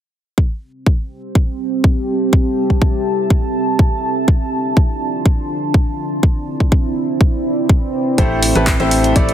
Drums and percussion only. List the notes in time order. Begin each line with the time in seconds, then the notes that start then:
0.38 kick
0.86 kick
1.35 kick
1.84 kick
2.33 kick
2.70 kick
2.82 kick
3.30 kick
3.79 kick
4.28 kick
4.77 kick
5.26 kick
5.74 kick
6.23 kick
6.60 kick
6.72 kick
7.21 kick
7.69 kick
8.18 kick, closed hi-hat
8.43 open hi-hat
8.55 closed hi-hat
8.67 kick, clap, closed hi-hat
8.80 closed hi-hat
8.91 open hi-hat
9.04 closed hi-hat
9.16 kick, closed hi-hat
9.29 closed hi-hat